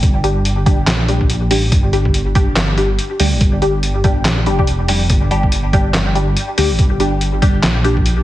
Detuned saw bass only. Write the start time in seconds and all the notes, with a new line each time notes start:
0.03 G1
0.87 A#1
1.51 A1
1.72 G1
3.20 D2
3.32 G1
3.41 G1
4.25 A#1
4.46 F1
4.89 F1
5.10 G1
6.58 D2
6.70 G1
6.79 G1
7.63 A#1